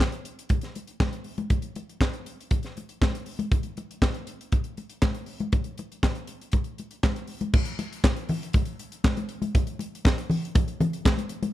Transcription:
0.00 kick medium
0.00 snare medium
0.00 clap medium
0.00 high conga medium
0.12 closed hi-hat soft
0.25 closed hi-hat medium
0.39 closed hi-hat medium
0.49 kick medium
0.49 closed hi-hat medium
0.49 muted conga medium
0.61 snare soft
0.61 closed hi-hat soft
0.75 closed hi-hat soft
0.75 muted conga soft
0.87 closed hi-hat soft
1.00 kick loud
1.00 snare loud
1.00 clap medium
1.00 high conga medium
1.13 closed hi-hat soft
1.24 open hi-hat medium
1.38 closed hi-hat soft
1.38 high conga medium
1.50 kick loud
1.50 closed hi-hat medium
1.50 muted conga medium
1.62 closed hi-hat soft
1.76 closed hi-hat medium
1.76 muted conga soft
1.89 closed hi-hat soft
2.01 kick loud
2.01 snare loud
2.01 clap medium
2.01 high conga medium
2.13 closed hi-hat soft
2.26 closed hi-hat medium
2.41 closed hi-hat soft
2.51 kick loud
2.51 closed hi-hat medium
2.51 muted conga soft
2.63 snare soft
2.63 closed hi-hat soft
2.77 closed hi-hat medium
2.77 muted conga soft
2.89 closed hi-hat soft
3.01 kick loud
3.01 snare loud
3.01 clap medium
3.01 high conga medium
3.15 closed hi-hat soft
3.26 open hi-hat medium
3.39 closed hi-hat soft
3.39 high conga medium
3.52 kick loud
3.52 closed hi-hat medium
3.52 muted conga medium
3.63 closed hi-hat soft
3.77 closed hi-hat medium
3.77 muted conga soft
3.91 closed hi-hat soft
4.02 kick loud
4.02 snare loud
4.02 clap medium
4.02 high conga medium
4.14 closed hi-hat soft
4.27 closed hi-hat medium
4.41 closed hi-hat soft
4.52 kick loud
4.52 closed hi-hat medium
4.52 muted conga medium
4.64 closed hi-hat soft
4.77 closed hi-hat medium
4.77 muted conga soft
4.89 closed hi-hat soft
5.02 kick loud
5.02 snare loud
5.02 clap medium
5.02 high conga medium
5.14 closed hi-hat soft
5.26 open hi-hat medium
5.40 closed hi-hat soft
5.40 high conga medium
5.52 kick loud
5.52 closed hi-hat medium
5.52 muted conga medium
5.64 closed hi-hat soft
5.78 closed hi-hat medium
5.78 muted conga soft
5.92 closed hi-hat soft
6.03 kick loud
6.03 snare medium
6.03 clap medium
6.03 high conga medium
6.15 closed hi-hat soft
6.27 closed hi-hat medium
6.41 closed hi-hat soft
6.52 kick loud
6.52 closed hi-hat medium
6.52 muted conga medium
6.64 closed hi-hat soft
6.78 closed hi-hat soft
6.78 muted conga soft
6.91 closed hi-hat soft
7.03 kick loud
7.03 snare loud
7.03 clap medium
7.03 high conga medium
7.16 closed hi-hat soft
7.27 open hi-hat medium
7.41 closed hi-hat soft
7.41 high conga medium
7.54 kick loud
7.54 crash loud
7.54 muted conga medium
7.65 closed hi-hat medium
7.79 closed hi-hat medium
7.79 muted conga medium
7.93 closed hi-hat medium
8.04 kick loud
8.04 snare loud
8.04 clap loud
8.04 high conga medium
8.16 closed hi-hat soft
8.29 open hi-hat medium
8.29 low conga medium
8.43 closed hi-hat medium
8.53 kick loud
8.53 closed hi-hat medium
8.53 muted conga medium
8.65 closed hi-hat soft
8.79 closed hi-hat medium
8.92 closed hi-hat medium
9.04 kick loud
9.04 snare loud
9.04 clap loud
9.04 high conga medium
9.17 closed hi-hat medium
9.17 high conga medium
9.29 closed hi-hat medium
9.42 closed hi-hat medium
9.42 high conga medium
9.55 kick loud
9.55 closed hi-hat medium
9.55 muted conga medium
9.67 closed hi-hat soft
9.79 closed hi-hat medium
9.79 muted conga medium
9.95 closed hi-hat soft
10.05 kick loud
10.05 snare loud
10.05 clap medium
10.05 high conga medium
10.18 closed hi-hat soft
10.30 open hi-hat medium
10.30 low conga medium
10.45 closed hi-hat medium
10.55 kick loud
10.55 closed hi-hat medium
10.55 muted conga medium
10.68 closed hi-hat soft
10.80 closed hi-hat medium
10.80 muted conga soft
10.80 low conga medium
10.93 closed hi-hat medium
11.05 kick loud
11.05 snare loud
11.05 clap loud
11.05 high conga medium
11.18 closed hi-hat soft
11.18 high conga medium
11.29 closed hi-hat medium
11.43 closed hi-hat medium
11.43 high conga medium

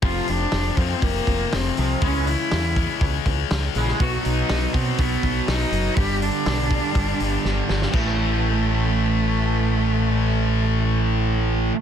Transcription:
0.02 0.19 F1 medium
0.02 0.26 F2 medium
0.02 0.76 F2 medium
0.02 0.27 C3 medium
0.02 0.77 C3 medium
0.02 0.27 F3 medium
0.02 0.76 F3 loud
0.02 0.32 F4 medium
0.02 kick loud
0.02 open hi-hat medium
0.28 0.45 F1 medium
0.28 0.50 F2 medium
0.28 0.51 C3 medium
0.28 0.79 D4 loud
0.28 open hi-hat medium
0.52 0.69 F1 medium
0.52 0.75 F2 medium
0.52 0.76 C3 medium
0.52 snare loud
0.52 open hi-hat medium
0.77 0.94 F2 medium
0.77 1.00 F2 medium
0.77 2.02 F2 medium
0.77 1.01 C3 medium
0.77 2.01 C3 medium
0.77 2.00 F3 medium
0.77 1.04 C4 medium
0.77 kick medium
0.77 open hi-hat medium
1.02 1.19 F1 medium
1.02 1.25 F2 medium
1.02 1.25 C3 medium
1.02 1.56 A#3 loud
1.02 kick loud
1.02 open hi-hat medium
1.27 1.44 F1 medium
1.27 1.50 F2 medium
1.27 1.50 C3 medium
1.27 kick medium
1.27 open hi-hat medium
1.52 1.70 F1 medium
1.52 1.75 F2 medium
1.52 1.75 C3 medium
1.52 2.03 C4 medium
1.52 snare loud
1.52 open hi-hat medium
1.77 1.94 C2 medium
1.77 2.01 F2 medium
1.77 2.01 C3 medium
1.77 2.02 F3 loud
1.77 open hi-hat medium
2.01 2.35 C#2 loud
2.01 2.75 C#3 medium
2.01 2.25 C#3 medium
2.01 2.26 E3 medium
2.01 2.75 G#3 medium
2.01 2.26 G#3 loud
2.01 2.76 C#4 loud
2.01 2.29 C#4 medium
2.01 kick loud
2.01 open hi-hat medium
2.27 2.49 C#3 medium
2.27 2.49 E3 medium
2.27 3.02 E4 medium
2.27 open hi-hat medium
2.51 2.85 E2 medium
2.51 2.74 C#3 medium
2.51 2.74 E3 medium
2.51 snare loud
2.51 open hi-hat medium
2.76 2.99 C#3 medium
2.76 3.99 C#3 medium
2.76 2.99 E3 medium
2.76 4.00 G#3 medium
2.76 3.99 C#4 medium
2.76 kick medium
2.76 open hi-hat medium
3.01 3.18 C#2 medium
3.01 3.24 C#3 medium
3.01 3.24 E3 medium
3.01 kick loud
3.01 open hi-hat medium
3.26 3.42 C#2 medium
3.26 3.49 C#3 medium
3.26 3.49 E3 medium
3.26 kick medium
3.26 open hi-hat soft
3.50 3.67 C#2 medium
3.50 3.74 C#3 medium
3.50 3.74 E3 medium
3.50 snare loud
3.50 open hi-hat medium
3.75 3.92 A#1 medium
3.75 3.99 C#3 medium
3.75 3.99 E3 medium
3.75 4.00 G#3 loud
3.75 open hi-hat medium
3.88 snare soft
4.00 4.17 B1 loud
4.00 4.73 B2 medium
4.00 4.73 F#3 medium
4.00 4.74 B3 medium
4.00 4.24 F#4 medium
4.00 kick loud
4.00 open hi-hat medium
4.25 4.42 B1 medium
4.25 4.76 D#4 loud
4.25 open hi-hat medium
4.49 4.66 B1 medium
4.49 snare loud
4.49 open hi-hat medium
4.74 4.91 B2 medium
4.74 5.97 B2 medium
4.74 5.97 F#3 medium
4.74 5.96 B3 medium
4.74 5.01 C4 medium
4.74 kick medium
4.74 open hi-hat medium
4.98 5.15 B1 medium
4.98 5.96 B2 medium
4.98 5.96 F#3 medium
4.98 5.48 B3 medium
4.98 5.97 B3 medium
4.98 kick loud
4.98 open hi-hat medium
5.23 5.40 B1 medium
5.23 kick medium
5.23 open hi-hat medium
5.48 5.64 B1 medium
5.48 5.99 D#4 medium
5.48 snare loud
5.48 open hi-hat medium
5.72 5.88 F#1 medium
5.72 open hi-hat medium
5.97 6.29 G1 medium
5.97 6.69 G2 medium
5.97 6.70 D3 loud
5.97 6.69 G3 medium
5.97 6.21 G4 loud
5.97 kick loud
5.97 open hi-hat medium
6.22 7.65 D4 loud
6.22 open hi-hat medium
6.46 6.79 B1 medium
6.46 snare loud
6.46 open hi-hat medium
6.70 7.93 G2 medium
6.70 7.92 D3 medium
6.70 7.91 G3 medium
6.70 kick medium
6.70 open hi-hat medium
6.93 7.12 G1 loud
6.93 7.91 G2 medium
6.93 7.92 D3 medium
6.93 7.92 G3 medium
6.93 kick loud
6.93 open hi-hat medium
7.20 7.36 G1 medium
7.20 open hi-hat medium
7.45 7.61 G1 medium
7.45 snare medium
7.69 7.86 G1 medium
7.69 snare medium
7.82 snare medium
7.92 11.70 A1 medium
7.92 11.72 A2 medium
7.92 11.75 E3 loud
7.92 11.71 A3 medium
7.92 kick loud
7.92 crash medium
7.96 11.77 A3 loud

